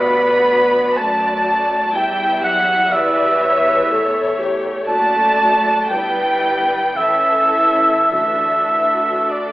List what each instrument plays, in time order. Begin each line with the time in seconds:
Already playing: double bass section D2, viola section G3 F#4, cello section B3, cor anglais B4, violin section D5 B5
0.49 viola section F#3
0.97 double bass section F#2, viola section F#3, cello section A3, violin section D5 A5, cor anglais A5
1.93 double bass section E2, viola section G3 E4, cello section G3, violin section E5 G5, cor anglais G5
2.43 cello section F#3, violin section F#5, cor anglais F#5
2.92 cello section E3, viola section G3 B4, violin section D5 E5, cor anglais E5
3.43 violin section C#5
3.90 viola section A3 A4, violin section C#5
4.38 viola section G4
4.88 double bass section F#1, cello section A3, viola section F#4, violin section D5 A5, cor anglais A5
5.41 viola section F#4
5.90 double bass section G1, cello section G3, viola section B3 E4, violin section B4 G5, cor anglais G5
6.44 viola section B3
6.96 double bass section A1, cello section E3, viola section C#4 E4, violin section A4 E5, cor anglais E5
8.12 double bass section D2, timpani D3, cello section E3, viola section D4 F#4, violin section A4 E5, cor anglais E5
9.31 cello section D3, violin section D5, cor anglais D5